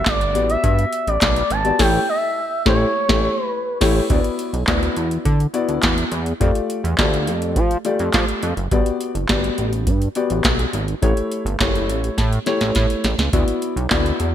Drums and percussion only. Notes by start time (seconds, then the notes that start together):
0.06 kick, snare, clap, closed hi-hat
0.21 closed hi-hat
0.35 closed hi-hat
0.50 closed hi-hat
0.64 kick, closed hi-hat
0.79 closed hi-hat
0.93 closed hi-hat
1.07 closed hi-hat
1.21 kick, snare, clap, closed hi-hat
1.36 closed hi-hat
1.50 closed hi-hat
1.65 closed hi-hat
1.79 kick, snare, crash
2.66 kick, snare
3.09 kick, snare
3.81 kick, snare, crash
4.10 kick, closed hi-hat
4.24 closed hi-hat
4.39 closed hi-hat
4.54 closed hi-hat
4.67 kick, snare, clap, closed hi-hat
4.83 closed hi-hat
4.96 closed hi-hat
5.11 closed hi-hat
5.25 kick, closed hi-hat
5.40 closed hi-hat
5.54 closed hi-hat
5.69 closed hi-hat
5.83 kick, snare, clap, closed hi-hat
5.98 closed hi-hat
6.12 closed hi-hat
6.26 closed hi-hat
6.41 kick, closed hi-hat
6.55 closed hi-hat
6.70 closed hi-hat
6.85 closed hi-hat
6.98 kick, snare, clap, closed hi-hat
7.14 closed hi-hat
7.27 closed hi-hat
7.42 closed hi-hat
7.56 kick, closed hi-hat
7.71 closed hi-hat
7.85 closed hi-hat
7.99 closed hi-hat
8.13 kick, snare, clap, closed hi-hat
8.28 closed hi-hat
8.43 closed hi-hat
8.57 closed hi-hat
8.71 kick, closed hi-hat
8.86 closed hi-hat
9.01 closed hi-hat
9.15 closed hi-hat
9.29 kick, snare, clap, closed hi-hat
9.44 closed hi-hat
9.58 closed hi-hat
9.73 closed hi-hat
9.87 kick, closed hi-hat
10.02 closed hi-hat
10.15 closed hi-hat
10.30 closed hi-hat
10.44 kick, snare, clap, closed hi-hat
10.59 closed hi-hat
10.73 closed hi-hat
10.88 closed hi-hat
11.02 kick, closed hi-hat
11.17 closed hi-hat
11.32 closed hi-hat
11.47 closed hi-hat
11.60 kick, snare, clap, closed hi-hat
11.75 closed hi-hat
11.89 closed hi-hat
12.04 closed hi-hat
12.18 kick, snare, closed hi-hat
12.33 closed hi-hat
12.46 snare, closed hi-hat
12.61 snare, closed hi-hat
12.75 kick, snare, closed hi-hat
12.90 closed hi-hat
13.04 snare, closed hi-hat
13.19 snare, closed hi-hat
13.33 kick, closed hi-hat
13.48 closed hi-hat
13.62 closed hi-hat
13.77 closed hi-hat
13.90 kick, snare, clap, closed hi-hat
14.06 closed hi-hat
14.20 closed hi-hat